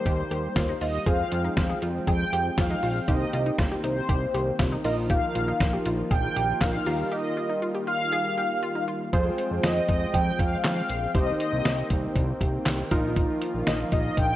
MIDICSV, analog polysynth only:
0, 0, Header, 1, 2, 480
1, 0, Start_track
1, 0, Key_signature, -4, "minor"
1, 0, Tempo, 504202
1, 1014, Time_signature, 4, 2, 24, 8
1, 13670, End_track
2, 0, Start_track
2, 0, Title_t, "Analog polysynth"
2, 0, Program_c, 0, 90
2, 0, Note_on_c, 0, 72, 89
2, 775, Note_on_c, 0, 75, 97
2, 803, Note_off_c, 0, 72, 0
2, 1020, Note_on_c, 0, 77, 107
2, 1021, Note_off_c, 0, 75, 0
2, 1699, Note_off_c, 0, 77, 0
2, 1975, Note_on_c, 0, 79, 114
2, 2455, Note_on_c, 0, 77, 97
2, 2469, Note_off_c, 0, 79, 0
2, 2938, Note_on_c, 0, 75, 89
2, 2949, Note_off_c, 0, 77, 0
2, 3383, Note_off_c, 0, 75, 0
2, 3656, Note_on_c, 0, 72, 86
2, 4577, Note_off_c, 0, 72, 0
2, 4611, Note_on_c, 0, 75, 100
2, 4720, Note_off_c, 0, 75, 0
2, 4852, Note_on_c, 0, 77, 111
2, 5535, Note_off_c, 0, 77, 0
2, 5808, Note_on_c, 0, 79, 113
2, 6290, Note_on_c, 0, 77, 97
2, 6306, Note_off_c, 0, 79, 0
2, 6778, Note_on_c, 0, 75, 90
2, 6787, Note_off_c, 0, 77, 0
2, 7222, Note_off_c, 0, 75, 0
2, 7494, Note_on_c, 0, 77, 118
2, 8416, Note_off_c, 0, 77, 0
2, 9177, Note_on_c, 0, 75, 99
2, 9403, Note_off_c, 0, 75, 0
2, 9414, Note_on_c, 0, 75, 95
2, 9654, Note_on_c, 0, 79, 113
2, 9661, Note_off_c, 0, 75, 0
2, 9897, Note_on_c, 0, 77, 100
2, 9901, Note_off_c, 0, 79, 0
2, 10123, Note_off_c, 0, 77, 0
2, 10135, Note_on_c, 0, 77, 101
2, 10581, Note_off_c, 0, 77, 0
2, 10618, Note_on_c, 0, 75, 102
2, 10845, Note_off_c, 0, 75, 0
2, 10856, Note_on_c, 0, 75, 84
2, 11302, Note_off_c, 0, 75, 0
2, 13015, Note_on_c, 0, 75, 97
2, 13123, Note_off_c, 0, 75, 0
2, 13256, Note_on_c, 0, 75, 90
2, 13497, Note_on_c, 0, 79, 112
2, 13502, Note_off_c, 0, 75, 0
2, 13670, Note_off_c, 0, 79, 0
2, 13670, End_track
0, 0, End_of_file